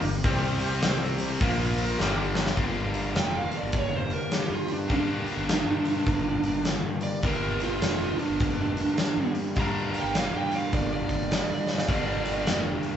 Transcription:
0.01 G1 G2 D3 A#3 D4 G4 A#4, open hi-hat
0.23 C2 C3 G3 C4 G4 C5, kick, open hi-hat
0.57 G3 C4 G4 C5, open hi-hat
0.80 G3 C4 G4 C5, snare, open hi-hat
1.17 G3 C4 G4 C5, open hi-hat
1.40 A#1 A#2 F3 A#3 F4 A#4, kick, open hi-hat
1.75 F3 A#3 F4 A#4, open hi-hat
1.98 G1 G2 D3 G3 A#3 D4 G4 A#4, snare
2.32 A#3 D4 G4 A#4, snare
2.46 snare
2.55 G1 G2 D3 G3 A#3 D4, kick, open hi-hat
2.94 open hi-hat
3.16 F1 G5, snare, open hi-hat
3.36 F5
3.52 open hi-hat
3.57 D5
3.63 G1
3.72 kick, open hi-hat
3.79 C#5
3.92 F1 C5
4.10 A#4, open hi-hat
4.31 G4, snare, open hi-hat
4.50 G2 F4
4.68 D4, open hi-hat
4.89 G2 D3 G3 A#3 D4, kick, open hi-hat
4.93 D4
5.27 open hi-hat
5.37 G1
5.49 snare, open hi-hat
5.65 G2
5.85 open hi-hat
6.06 G1, kick, open hi-hat
6.42 G1, open hi-hat
6.65 snare, open hi-hat
6.83 G2
7.01 D5, open hi-hat
7.23 G1 G2 D3 G3 A#3 D4 A#4, kick, open hi-hat
7.60 F4, open hi-hat
7.82 F1, snare, open hi-hat
8.19 D4, open hi-hat
8.30 G1
8.40 kick, open hi-hat
8.59 F1
8.77 open hi-hat
8.98 snare, open hi-hat
9.17 G2
9.35 open hi-hat
9.56 G2 D3 G3 A#3 D4 A#5, kick, open hi-hat
9.94 open hi-hat
10.00 G1 G5
10.15 F5, snare, open hi-hat
10.34 G2 G5
10.51 open hi-hat
10.56 F5
10.73 G1 D5, kick, open hi-hat
10.93 D5
11.09 G1, kick, open hi-hat
11.31 snare, open hi-hat
11.50 G2
11.67 snare
11.78 snare
11.87 G1 G2 D3 G3 A#3 D4, kick, open hi-hat
12.26 open hi-hat
12.47 F1, snare, open hi-hat
12.83 open hi-hat

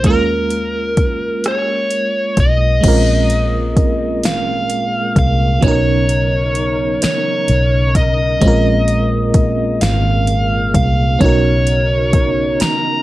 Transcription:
0.03 D#2 G#3 A#3 C#4 A#4, kick, closed hi-hat
0.09 F4 A#4
0.50 closed hi-hat
0.97 kick, closed hi-hat
1.44 C#5, cross-stick, closed hi-hat
1.91 closed hi-hat
2.37 B1 D#5, kick, closed hi-hat
2.81 A#1 A#2 G#3 A#3 C4 C#4, kick, closed hi-hat, crash
2.86 F4 A#4
3.30 closed hi-hat
3.77 kick, closed hi-hat
4.24 G#1 F5, snare, closed hi-hat
4.70 closed hi-hat
5.16 C2 F5, kick, closed hi-hat
5.61 B1 C#3 F#3 B3 C#4 D#4 A#4 C#5, kick, closed hi-hat
5.66 D#4 A#4
6.09 closed hi-hat
6.55 closed hi-hat
7.02 C#5, muted fingered electric bass stroke, snare, closed hi-hat
7.48 B1, closed hi-hat
7.95 D#5, kick, closed hi-hat
8.41 A#1 A#2 G#3 A#3 C4 C#4, kick, closed hi-hat
8.46 F4 A#4
8.88 closed hi-hat
9.34 kick, closed hi-hat
9.81 G#1 F5, snare, closed hi-hat
10.27 closed hi-hat
10.74 C2 F5, kick, closed hi-hat
11.19 B1 C#3 B3 C#4 D#4 A#4 C#5, kick, closed hi-hat
11.24 F#4 A#4
11.67 closed hi-hat
12.13 kick, closed hi-hat
12.60 A#5, muted fingered electric bass stroke, snare, closed hi-hat

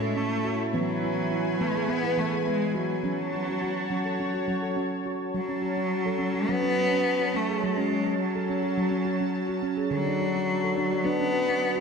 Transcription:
Already playing: A2 G#3 E4 C#5 A5
0.02 A4
0.16 A3 C#4
0.45 F#4
0.73 E3 F#3 B3 B4 G#5
1.03 E4
1.17 B3
1.31 E4
1.60 E3 A3 B3
1.75 G#4
1.88 B3
2.04 E4
2.18 E3 A3 B3
2.32 G#4
2.42 A3
2.47 G#3 B3
2.75 F#3 F#4
3.04 F#3 C#4 F#4 C#5 A5
3.33 F#4
3.47 C#4
3.62 F#4
3.90 F#3 C#4
4.05 A4
4.20 C#4
4.34 F#4
4.48 F#3 C#4
4.62 A4
4.76 C#4
5.06 F#4
5.34 F#3 C#4 A5
5.49 C#4
5.62 F#4
5.77 C#4
6.06 A4
6.19 C#4
6.34 F#4
6.49 F#3 B3
6.62 C#4
6.77 F#4
6.92 C#4
7.20 F#4
7.34 A3 C#4
7.49 G#4
7.63 F#3 G#3
7.77 C#4
7.91 F#4
8.06 C#4
8.20 F#3
8.35 A4
8.49 C#4
8.63 F#4
8.78 F#3
8.91 C#4
9.05 F#4
9.20 C#4
9.49 F#4
9.62 C#4
9.77 G#4
9.91 D3 F#3 D4
10.07 D4
10.20 F#4
10.35 D4
10.64 A4
10.77 D4
10.92 F#4
11.05 B3 D4
11.20 C#4
11.34 F#4
11.48 D4
11.76 F#4

